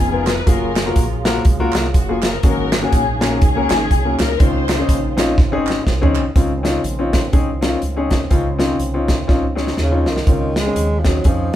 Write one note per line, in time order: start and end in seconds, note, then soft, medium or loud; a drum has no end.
0.00 0.40 F1 medium
0.00 0.23 C#3 medium
0.00 0.45 F3 medium
0.00 0.23 B3 medium
0.00 0.45 B3 medium
0.00 0.45 D#4 medium
0.00 0.23 F4 medium
0.00 0.23 G#4 loud
0.00 0.45 A#4 medium
0.12 0.32 B3 medium
0.12 0.32 D#4 medium
0.12 0.33 F4 medium
0.12 0.33 A#4 medium
0.27 0.47 B4 loud
0.27 snare loud
0.27 clap medium
0.27 closed hi-hat medium
0.46 0.89 F#1 loud
0.46 2.39 F#3 medium
0.46 0.69 A#3 medium
0.46 2.40 A#3 medium
0.46 1.42 C#4 medium
0.46 2.39 F4 medium
0.46 0.69 F4 medium
0.46 1.42 F4 medium
0.46 0.69 F#4 medium
0.46 2.39 G#4 medium
0.46 0.69 G#4 medium
0.46 1.22 A#4 medium
0.46 kick loud
0.46 closed hi-hat medium
0.76 snare loud
0.76 clap loud
0.76 closed hi-hat medium
0.85 1.03 A#3 medium
0.85 1.04 F4 medium
0.85 1.04 F#4 medium
0.85 1.04 A#4 medium
0.96 1.38 A#1 medium
0.96 kick loud
0.96 closed hi-hat loud
1.25 1.41 A#3 medium
1.25 1.41 F4 medium
1.25 1.41 F#4 medium
1.25 1.41 A#4 loud
1.25 snare loud
1.25 clap medium
1.25 closed hi-hat medium
1.45 1.70 C#2 medium
1.45 kick loud
1.45 closed hi-hat medium
1.60 1.85 A#3 medium
1.60 1.85 F4 medium
1.60 1.85 F#4 medium
1.60 1.85 A#4 loud
1.72 1.91 C2 medium
1.72 snare loud
1.72 clap loud
1.72 closed hi-hat medium
1.94 2.36 F#1 loud
1.94 2.23 F#4 medium
1.94 kick medium
1.94 closed hi-hat medium
2.09 2.29 A#3 medium
2.09 2.29 F4 medium
2.09 2.29 F#4 medium
2.09 2.29 G#4 medium
2.22 snare loud
2.22 clap medium
2.22 closed hi-hat medium
2.27 2.44 A#4 medium
2.43 2.85 G#1 loud
2.43 3.17 G#2 medium
2.43 4.36 F#3 medium
2.43 2.66 A#3 medium
2.43 4.36 A#3 medium
2.43 2.51 C4 soft
2.43 2.66 C#4 medium
2.43 2.83 C#4 medium
2.43 2.66 F#4 medium
2.43 3.38 F#4 medium
2.43 4.36 G#4 medium
2.43 2.66 G#4 medium
2.43 2.81 A#4 loud
2.43 kick loud
2.43 closed hi-hat medium
2.50 4.38 C#4 medium
2.72 snare loud
2.72 clap loud
2.72 closed hi-hat medium
2.82 3.00 A#3 medium
2.82 3.00 C#4 medium
2.82 3.22 C#4 medium
2.82 3.22 D#4 medium
2.82 3.00 F#4 medium
2.82 3.22 G#4 medium
2.82 3.00 A#4 medium
2.92 3.42 A#1 medium
2.92 kick medium
2.92 closed hi-hat loud
3.20 3.36 A#3 medium
3.20 3.36 C#4 medium
3.20 4.16 C#4 medium
3.20 4.16 D#4 medium
3.20 3.36 F#4 medium
3.20 4.16 G#4 loud
3.20 3.37 A#4 medium
3.20 snare loud
3.20 clap medium
3.20 closed hi-hat medium
3.42 3.66 C#2 medium
3.42 kick loud
3.42 closed hi-hat medium
3.55 3.81 A#3 medium
3.55 3.81 C#4 medium
3.55 3.81 F#4 medium
3.55 3.81 A#4 medium
3.70 3.87 G#1 medium
3.70 snare loud
3.70 clap loud
3.70 closed hi-hat medium
3.91 4.15 C2 loud
3.91 kick medium
3.91 closed hi-hat medium
4.05 4.25 A#3 medium
4.05 4.25 C#4 medium
4.05 4.25 F#4 medium
4.05 4.25 A#4 medium
4.19 4.37 C#2 medium
4.19 4.40 A#4 loud
4.19 snare loud
4.19 clap medium
4.19 closed hi-hat medium
4.39 4.82 C#2 loud
4.39 5.14 C#3 medium
4.39 6.31 D#3 medium
4.39 6.31 C4 medium
4.39 4.62 C4 medium
4.39 6.31 C#4 medium
4.39 4.62 C#4 medium
4.39 4.62 D#4 medium
4.39 5.34 D#4 medium
4.39 6.31 F4 medium
4.39 4.62 F4 medium
4.39 5.34 F4 medium
4.39 5.18 C5 medium
4.39 kick loud
4.39 closed hi-hat medium
4.69 snare loud
4.69 clap loud
4.69 closed hi-hat medium
4.78 4.96 C4 medium
4.78 4.96 C#4 medium
4.78 4.96 D#4 medium
4.78 4.96 G#4 medium
4.89 5.38 A#1 medium
4.89 kick medium
4.89 closed hi-hat loud
5.17 5.32 C4 medium
5.17 5.32 C#4 medium
5.17 5.32 D#4 medium
5.17 5.33 F4 loud
5.17 snare loud
5.17 clap medium
5.17 closed hi-hat medium
5.38 5.79 G#1 medium
5.38 kick loud
5.38 snare medium
5.52 5.77 C4 medium
5.52 5.77 C#4 medium
5.52 5.77 D#4 medium
5.52 5.77 G#4 loud
5.67 snare medium
5.67 clap loud
5.87 6.28 C2 medium
5.87 kick medium
5.87 snare medium
6.02 6.21 C4 medium
6.02 6.21 C#4 medium
6.02 6.21 D#4 medium
6.02 6.21 G#4 medium
6.02 floor tom loud
6.15 clap medium
6.35 6.77 C#2 loud
6.35 7.10 C#3 medium
6.35 10.23 D#3 medium
6.35 6.50 C4 medium
6.35 9.54 C4 medium
6.35 6.50 C#4 medium
6.35 9.54 C#4 medium
6.35 6.50 D#4 medium
6.35 9.54 F4 medium
6.35 6.51 F4 medium
6.35 kick loud
6.35 closed hi-hat medium
6.63 6.79 C4 medium
6.63 6.79 C#4 medium
6.63 6.79 D#4 medium
6.63 6.80 F4 loud
6.63 snare loud
6.63 closed hi-hat medium
6.84 7.26 A#1 medium
6.84 closed hi-hat medium
6.99 7.18 C4 medium
6.99 7.19 C#4 medium
6.99 7.19 D#4 medium
6.99 7.19 F4 medium
7.13 kick medium
7.13 snare loud
7.13 closed hi-hat medium
7.33 7.75 C2 loud
7.33 7.48 C4 medium
7.33 7.48 C#4 medium
7.33 7.48 D#4 medium
7.33 7.48 G#4 medium
7.33 kick loud
7.33 closed hi-hat medium
7.61 7.77 C4 medium
7.61 7.77 C#4 medium
7.61 7.77 D#4 medium
7.61 7.78 F4 loud
7.61 snare loud
7.61 closed hi-hat medium
7.82 8.24 C#2 medium
7.82 closed hi-hat medium
7.96 8.16 C4 medium
7.96 8.16 C#4 medium
7.96 8.16 D#4 medium
7.96 8.17 G#4 medium
8.11 kick medium
8.11 snare loud
8.11 closed hi-hat medium
8.30 8.73 C#2 medium
8.30 9.05 C#3 medium
8.30 8.45 C4 medium
8.30 8.46 C#4 medium
8.30 8.46 D#4 medium
8.30 8.46 F4 loud
8.30 kick loud
8.30 closed hi-hat medium
8.58 8.74 C4 medium
8.58 8.75 C#4 medium
8.58 8.74 D#4 medium
8.58 8.75 F4 medium
8.58 snare loud
8.58 closed hi-hat medium
8.79 9.21 C2 medium
8.79 closed hi-hat medium
8.94 9.14 C4 medium
8.94 9.14 C#4 medium
8.94 9.14 D#4 medium
8.94 9.14 F4 medium
9.08 kick medium
9.08 snare loud
9.08 closed hi-hat medium
9.27 9.71 C#2 medium
9.27 9.43 C4 medium
9.27 9.43 C#4 medium
9.27 9.43 D#4 medium
9.27 9.43 F4 loud
9.27 kick loud
9.27 snare soft
9.55 9.72 C4 medium
9.55 9.72 C#4 medium
9.55 9.72 D#4 medium
9.55 9.78 F4 medium
9.55 9.72 G#4 medium
9.55 snare medium
9.60 9.78 C4 medium
9.67 snare medium
9.77 10.07 D#2 medium
9.77 10.06 D#4 medium
9.77 10.06 G#4 medium
9.77 snare medium
9.82 10.12 C#3 medium
9.91 10.12 C4 medium
9.91 10.11 C#4 medium
9.91 10.12 D#4 medium
9.91 10.12 F4 medium
10.06 10.24 C2 medium
10.06 10.25 F4 soft
10.06 10.53 C5 medium
10.06 snare medium
10.10 10.60 D#3 medium
10.17 snare medium
10.26 10.68 C#2 medium
10.26 11.01 C#3 medium
10.26 11.56 D#3 medium
10.26 11.56 C4 medium
10.26 10.49 C4 medium
10.26 11.56 C#4 medium
10.26 10.49 C#4 medium
10.26 10.49 D#4 medium
10.26 11.56 F4 medium
10.26 10.49 F4 medium
10.26 kick loud
10.26 closed hi-hat medium
10.56 11.01 G#3 loud
10.56 snare loud
10.56 closed hi-hat medium
10.66 10.83 C4 medium
10.66 10.83 C#4 medium
10.66 10.84 D#4 medium
10.66 10.84 G#4 medium
10.76 11.17 D#2 medium
10.76 closed hi-hat medium
11.00 11.07 F3 medium
11.04 11.25 F#3 medium
11.04 11.15 C4 medium
11.04 11.15 C#4 medium
11.04 11.15 D#4 medium
11.04 11.15 G#4 medium
11.04 kick medium
11.04 snare medium
11.04 closed hi-hat medium
11.24 11.50 F2 medium
11.24 11.56 F3 medium
11.24 11.47 C4 medium
11.24 11.47 C#4 medium
11.24 11.47 D#4 medium
11.24 11.47 G#4 medium
11.24 kick loud
11.24 closed hi-hat medium